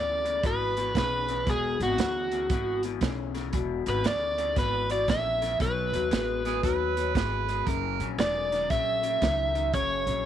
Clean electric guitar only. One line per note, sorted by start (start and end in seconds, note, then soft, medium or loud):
0.00 0.22 E2 medium
0.00 0.22 C#3 medium
0.25 0.41 E2 medium
0.25 0.42 C#3 medium
0.43 0.73 E2 medium
0.43 0.74 B2 loud
0.77 0.94 E2 medium
0.77 0.94 B2 medium
0.95 1.25 E2 medium
0.95 1.25 C#3 loud
1.29 1.45 E2 medium
1.29 1.45 C#3 medium
1.47 1.77 E2 medium
1.47 1.77 B2 medium
1.80 1.97 E2 medium
1.80 1.97 B2 medium
1.99 2.29 E2 medium
1.99 2.29 C#3 medium
2.33 2.49 E2 medium
2.33 2.49 C#3 medium
2.51 2.80 E2 medium
2.51 2.81 B2 loud
2.84 3.01 E2 medium
2.84 3.01 B2 medium
3.02 3.32 E2 medium
3.02 3.32 C#3 loud
3.34 3.51 E2 medium
3.34 3.52 C#3 medium
3.53 3.83 E2 medium
3.53 3.84 B2 medium
3.86 4.03 E2 medium
3.86 4.03 B2 medium
4.05 4.35 E2 medium
4.05 4.35 C#3 medium
4.38 4.55 E2 medium
4.38 4.55 C#3 medium
4.56 4.86 E2 medium
4.56 4.87 B2 loud
4.89 5.06 E2 medium
4.89 5.07 B2 medium
5.08 5.38 E2 medium
5.08 5.39 C#3 medium
5.41 5.58 E2 medium
5.41 5.58 C#3 medium
5.60 5.90 B2 medium
5.60 5.90 F#3 medium
5.94 6.10 B2 medium
5.94 6.11 F#3 medium
6.11 6.42 B2 medium
6.11 6.42 G#3 medium
6.45 6.62 B2 medium
6.45 6.62 G#3 medium
6.64 6.94 B2 medium
6.64 6.94 F#3 medium
6.97 7.13 B2 medium
6.97 7.14 F#3 medium
7.16 7.45 B2 medium
7.16 7.46 G#3 loud
7.49 7.65 B2 medium
7.49 7.65 G#3 medium
7.67 7.97 F#2 medium
7.67 7.97 C#3 medium
8.00 8.17 F#2 medium
8.00 8.17 C#3 medium
8.19 8.49 F#2 medium
8.19 8.49 D#3 medium
8.52 8.69 F#2 medium
8.52 8.69 D#3 medium
8.70 9.00 F#2 medium
8.70 9.01 C#3 medium
9.03 9.20 F#2 medium
9.03 9.20 C#3 medium
9.22 9.52 F#2 medium
9.22 9.52 D#3 medium
9.55 9.72 F#2 medium
9.55 9.72 D#3 medium
9.74 10.04 F#2 medium
9.74 10.04 C#3 medium
10.07 10.24 F#2 medium
10.07 10.24 C#3 medium